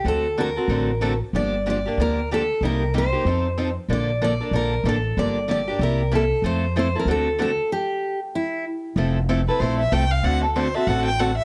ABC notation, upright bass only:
X:1
M:4/4
L:1/8
Q:"Swing" 1/4=189
K:F
V:1 name="Upright bass" clef=bass
D,,4 A,,,4 | G,,,4 D,,4 | C,,4 F,,4 | B,,,4 B,,,2 A,,,2 |
G,,,4 C,,4 | F,,4 D,,4 | z8 | F,,,4 B,,,2 C,,2 |
D,,4 A,,,4 |]